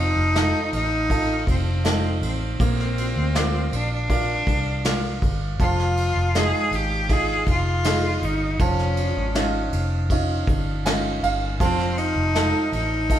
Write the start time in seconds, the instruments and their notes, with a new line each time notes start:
Already playing: fingered electric bass F1, grand piano F3
0.00 cello D#4
0.16 fingered electric bass F1
0.35 grand piano D#4 F4 A4, snare, ride
0.73 fingered electric bass A1, cello D#4, ride
1.10 grand piano D#4 F4 A4, kick, ride
1.47 fingered electric bass F1, cello C4, kick, ride
1.84 grand piano D#4 F4 A4, snare, ride
2.22 fingered electric bass A1, cello C4, ride
2.60 fingered electric bass A#1, grand piano A#3, kick, ride
2.80 snare
2.98 ride
3.16 fingered electric bass D2
3.35 grand piano F4 A#4 D5, snare, ride
3.72 fingered electric bass A#1, cello D4, ride
3.93 cello D4
4.09 grand piano F4 A#4 D5, kick, ride
4.47 fingered electric bass C2, kick, ride
4.84 grand piano F4 A#4 D5, snare, ride
5.22 fingered electric bass G1, kick, ride
5.60 fingered electric bass F1, grand piano F3, cello F4, kick, ride
5.80 snare
5.97 ride
6.15 fingered electric bass F1
6.35 grand piano G#3 D#4 F4, cello G#4, snare, ride
6.71 fingered electric bass G#1, cello G4, ride
7.09 grand piano D#4 F4 G#4, cello G#4, kick, ride
7.47 fingered electric bass F1, cello F4, kick, ride
7.84 grand piano D#4 F4 G#4, snare, ride
8.22 fingered electric bass G1, cello D#4, ride
8.59 fingered electric bass F1, grand piano F3, cello C#4, kick, ride
8.79 snare
8.97 ride
9.17 fingered electric bass G#1
9.35 grand piano C#4 D#4 F4, snare, ride
9.73 fingered electric bass F1, ride
10.10 grand piano C#4 D#4 F4, kick, ride
10.47 fingered electric bass G1, kick, ride
10.85 grand piano C#4 D#4 F4 G#5, snare, ride
11.23 fingered electric bass G1, grand piano F5, ride
11.60 fingered electric bass F1, grand piano F3, cello C4, kick, ride
11.80 snare
11.98 cello D#4, ride
12.16 fingered electric bass F1
12.35 grand piano D#4 F4 A4, snare, ride
12.72 fingered electric bass A1, cello D#4, ride
13.10 grand piano D#4 F4 A4, kick, ride